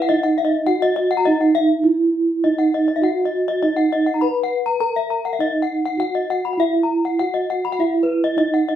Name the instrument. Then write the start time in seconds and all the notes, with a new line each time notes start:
bronze metallophone
0.02 F#5
0.09 D#4 D#5
0.23 F#5
0.38 E5
0.45 D#5
0.67 F#4 F#5
0.82 D#5
0.96 D#5
1.11 F#5
1.17 A#5
1.25 D#4 D#5
1.41 F#5
1.55 E5
1.84 E4
2.44 D#4 D#5
2.58 F#5
2.74 D#5
2.88 D#5
2.96 E5
3.01 F#4 F#5
3.25 D#5
3.48 D#5
3.63 D#4 D#5
3.76 F#5
3.92 D#5
4.06 F#5
4.14 A#5
4.21 B4 B5
4.44 F#5
4.66 A#5
4.80 A#4 A#5
4.96 E5
5.10 A#5
5.25 F#5
5.33 E5
5.39 D#4 D#5
5.62 F#5
5.85 F#5
5.97 F#4 F#5
6.15 D#5
6.30 F#5
6.45 B5
6.53 F#5
6.57 E4 E5
6.83 A#5
7.05 F#5
7.19 F#4 F#5
7.34 D#5
7.50 F#5
7.65 B5
7.72 F#5
7.79 E4 E5
8.03 B4
8.24 D#5
8.37 D#4 D#5
8.54 F#5
8.69 D#5